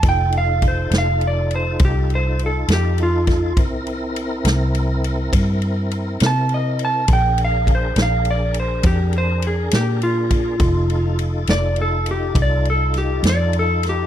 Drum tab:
RD |xxxxxxxxxxxx|xxxxxxxxxxxx|xxxxxxxxxxxx|xxxxxxxxxxxx|
SD |---o-----o-o|---o-----o--|---o-----o--|---o----oo-o|
BD |o-o---o----o|o-----o-----|o-o---o----o|o-----o-----|